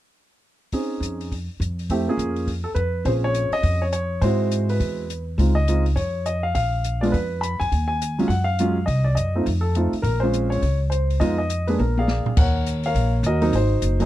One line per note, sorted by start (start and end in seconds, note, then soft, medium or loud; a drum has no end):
0.72 1.31 C4 soft
0.72 1.31 C#4 soft
0.72 1.31 D#4 soft
0.72 1.31 G#4 soft
0.72 kick soft
0.72 open hi-hat soft
1.00 1.47 F2 medium
1.00 closed hi-hat soft
1.21 open hi-hat soft
1.32 kick soft
1.32 open hi-hat soft
1.60 2.06 F2 medium
1.60 closed hi-hat soft
1.79 open hi-hat soft
1.90 2.06 A3 medium
1.90 2.06 C4 medium
1.90 2.06 E4 soft
1.90 2.07 G4 medium
1.90 kick soft
1.90 open hi-hat soft
2.08 2.48 A#3 medium
2.08 2.48 C#4 medium
2.08 2.48 F4 medium
2.08 2.49 G#4 medium
2.17 2.64 F2 medium
2.17 closed hi-hat soft
2.36 open hi-hat soft
2.47 kick soft
2.47 open hi-hat soft
2.64 2.69 A4 medium
2.75 3.03 F2 medium
2.75 3.03 B4 medium
2.75 closed hi-hat soft
3.05 3.49 A#1 medium
3.05 3.86 C4 soft
3.05 3.87 C#4 soft
3.05 3.87 F4 soft
3.05 3.87 G#4 soft
3.05 3.11 C5 medium
3.05 kick soft
3.05 open hi-hat soft
3.24 3.54 C#5 medium
3.34 closed hi-hat soft
3.51 3.83 D#5 loud
3.51 muted upright bass stroke soft
3.51 open hi-hat soft
3.63 4.19 F2 medium
3.63 kick soft
3.63 open hi-hat soft
3.82 3.87 C#5 medium
3.92 4.20 C#5 medium
3.92 closed hi-hat soft
4.21 4.77 G#2 medium
4.21 5.03 G#3 medium
4.21 5.03 C4 medium
4.21 5.03 E4 medium
4.21 5.04 F#4 medium
4.21 4.70 C5 medium
4.21 kick soft
4.21 open hi-hat soft
4.51 closed hi-hat soft
4.69 5.24 B4 medium
4.69 open hi-hat soft
4.80 5.35 E2 medium
4.80 kick soft
4.80 open hi-hat soft
5.10 closed hi-hat soft
5.38 5.93 C#2 medium
5.38 5.54 G#3 soft
5.38 5.55 C4 soft
5.38 5.55 D#4 soft
5.38 5.55 F4 medium
5.38 kick soft
5.38 open hi-hat soft
5.55 5.83 D#5 medium
5.68 5.84 G#3 soft
5.68 5.84 C4 soft
5.68 5.84 D#4 soft
5.68 5.84 F4 medium
5.68 closed hi-hat soft
5.86 open hi-hat soft
5.96 6.52 F2 medium
5.96 6.26 C#5 medium
5.96 kick soft
5.96 open hi-hat soft
6.26 6.43 D#5 medium
6.26 closed hi-hat soft
6.43 6.53 F5 medium
6.55 7.10 A#1 medium
6.55 7.03 F5 medium
6.55 kick soft
6.55 open hi-hat soft
6.84 closed hi-hat soft
7.01 7.12 G#3 medium
7.01 7.12 B3 medium
7.01 7.12 D4 medium
7.01 7.13 F4 medium
7.01 7.06 D5 medium
7.01 open hi-hat soft
7.12 7.57 F2 medium
7.12 7.42 B4 medium
7.12 kick soft
7.12 open hi-hat soft
7.41 7.58 B5 medium
7.41 closed hi-hat soft
7.60 7.71 F2 medium
7.60 7.86 G#5 medium
7.60 open hi-hat soft
7.72 8.27 D#2 medium
7.72 kick soft
7.72 open hi-hat soft
7.88 8.26 G#5 medium
8.02 closed hi-hat soft
8.19 8.29 F#3 medium
8.19 8.29 G#3 medium
8.19 8.29 C#4 medium
8.19 8.29 F4 medium
8.19 open hi-hat soft
8.28 8.85 F#2 medium
8.28 8.45 F#5 medium
8.28 kick soft
8.28 open hi-hat soft
8.44 8.83 F5 medium
8.59 8.75 F#3 medium
8.59 8.76 G#3 medium
8.59 8.76 C#4 medium
8.59 8.76 F4 medium
8.59 closed hi-hat soft
8.86 9.15 C2 medium
8.86 9.05 D#5 medium
8.86 kick soft
8.86 open hi-hat soft
9.04 9.15 D5 medium
9.15 9.44 F#2 medium
9.15 9.43 D#5 medium
9.15 closed hi-hat soft
9.35 9.45 A3 soft
9.35 9.45 C4 soft
9.35 9.46 D#4 soft
9.35 9.46 F4 medium
9.46 9.90 F2 medium
9.46 kick soft
9.46 open hi-hat soft
9.61 9.89 A4 medium
9.75 9.92 A3 medium
9.75 9.92 C4 soft
9.75 9.92 D#4 soft
9.75 9.92 F4 medium
9.75 closed hi-hat soft
9.93 muted upright bass stroke soft
9.93 open hi-hat soft
10.02 10.59 A#1 medium
10.02 10.20 A#4 medium
10.02 kick soft
10.02 open hi-hat soft
10.20 10.61 G#3 medium
10.20 10.61 C#4 medium
10.20 10.61 F4 medium
10.20 10.51 C5 medium
10.24 10.61 C4 soft
10.33 closed hi-hat soft
10.50 10.78 C#5 medium
10.50 open hi-hat soft
10.62 11.18 C#2 medium
10.62 kick soft
10.62 open hi-hat soft
10.90 11.18 C5 medium
10.90 closed hi-hat soft
11.10 open hi-hat soft
11.20 11.76 F2 medium
11.20 11.37 G#3 medium
11.20 11.37 B3 medium
11.20 11.37 D#4 medium
11.20 11.37 F4 medium
11.20 11.37 D#5 medium
11.20 kick soft
11.20 open hi-hat soft
11.38 11.66 D#5 medium
11.50 closed hi-hat soft
11.67 11.78 G#3 medium
11.67 11.78 A#3 soft
11.67 11.79 D4 medium
11.67 11.78 G#4 medium
11.67 11.72 B4 medium
11.67 open hi-hat soft
11.79 12.23 A#1 medium
11.79 12.23 A#4 medium
11.79 high tom soft
11.97 12.36 G#4 medium
11.97 12.36 D5 medium
11.97 12.39 F5 medium
11.97 high tom soft
12.08 snare medium
12.26 muted upright bass stroke soft
12.26 floor tom medium
12.37 12.92 D#2 medium
12.37 12.86 A#4 medium
12.37 12.85 C#5 medium
12.37 12.64 F#5 medium
12.37 kick medium
12.37 crash medium
12.66 closed hi-hat medium
12.83 13.26 A#4 medium
12.83 13.39 C#5 medium
12.83 13.12 F5 medium
12.83 open hi-hat soft
12.95 13.22 A#1 medium
12.95 kick soft
12.95 open hi-hat soft
13.23 13.51 D#2 medium
13.23 13.53 F#4 medium
13.23 13.55 D#5 medium
13.23 closed hi-hat soft
13.27 13.53 A#4 medium
13.42 13.52 F#3 medium
13.42 13.52 A#3 medium
13.42 13.52 C4 medium
13.42 13.52 D#4 medium
13.42 open hi-hat soft
13.52 13.80 G#1 medium
13.52 13.99 D#4 medium
13.52 14.05 F#4 medium
13.52 14.01 C5 medium
13.52 kick soft
13.52 open hi-hat soft
13.82 14.05 F#1 medium
13.82 closed hi-hat medium
14.00 14.05 F#3 medium
14.00 14.05 A#3 medium
14.00 14.05 C4 medium
14.00 14.05 D#4 medium
14.00 14.05 C5 medium
14.00 open hi-hat soft